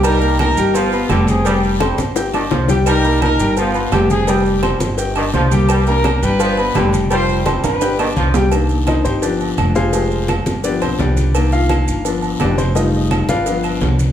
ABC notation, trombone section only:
X:1
M:4/4
L:1/8
Q:1/4=170
K:Cm
V:1 name="Trombone section" clef=bass
G,4 F,2 D,2 | G,4- G, E, F,2 | G,4 F,2 D,2 | G,4- G, E, F,2 |
G,4 F,2 D,2 | G,4- G, E, F,2 | z8 | z8 |
z8 | z8 |]